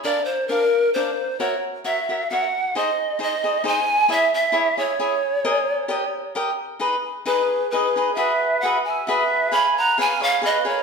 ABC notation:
X:1
M:3/4
L:1/8
Q:1/4=133
K:G#m
V:1 name="Pan flute"
=d ^B A2 B2 | c z e2 f2 | d2 d2 g2 | e e2 c3- |
c4 z2 | z2 B2 B2 | e2 f g e2 | b a g ^e d c |]
V:2 name="Cavaquinho"
[=DA=d^e] z [DAde] z [DAde] z | [FAce] z [FAce] [FAce] [FAce] z | [DG^Bd] z [DGBd] [DGBd] [DGBd] z | [EGce] z [EGce] [EGce] [EGce] z |
[GAdg] z [=GAd=g] z [GAdg] z | [DGBd] z [DGBd] z [DGBd] [DGBd] | [FGBe] z [FGBe] z [FGBe] z | [GBc^e] z [GBce] [GBce] [GBce] [GBce] |]
V:3 name="Trumpet"
z6 | z6 | z6 | z6 |
z6 | z2 G2 G2 | B2 B e B2 | g f ^e c B A |]